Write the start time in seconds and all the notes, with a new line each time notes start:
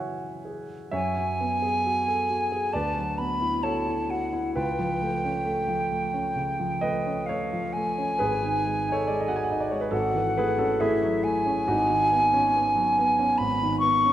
Already playing: C#3 E3 F#4 G#4 C#5 E5 F#5 G#5
0.45 G#4
0.91 F#2 C#5 E5 G#5
1.17 F#3
1.40 B3
1.62 G#4
1.87 F#4
2.08 A4
2.30 F#4
2.52 G#4
2.73 D2 B4 D5 A5
2.96 F#3
3.18 B3 B5
3.41 E4
3.63 F#4 A4 C#5 A5
3.87 E4
4.10 F#4 F#5
4.33 E4
4.54 C#2 F4 B4 G5
4.79 F3
5.01 A3
5.24 C#4
5.45 A3
5.68 F3
5.91 A3
6.14 C#4
6.35 C#3
6.59 F3
6.81 A3 B4 D#5
7.06 C#4
7.26 A3 A4 C#5 F5
7.53 F3
7.73 A3 G#5
7.98 C#4
8.19 G#1 G#4 B4
8.43 D#3
8.65 G#3
8.89 D#4 C#5
8.93 A4
9.07 G#3 D5
9.20 D#5
9.28 F#4 F#5
9.36 G#5
9.43 F#5
9.51 D#4 D#5
9.60 D5
9.71 G#3 C#5
9.81 B4
9.91 G#1 F#4 A4 F#5
10.15 E3
10.37 A3 G#4 B4
10.58 C#4 F#4 A4
10.80 A3 E4 G#4 E5
11.03 F#3
11.24 A3 G#5
11.46 C#4
11.68 G#1 D#4 F#4
11.89 D#3
12.11 B3
12.34 C#4
12.56 B3
12.75 F#3
12.98 B3
13.19 C#4
13.38 G#1 B5
13.62 D#3
13.80 B3 C#6
14.06 C#4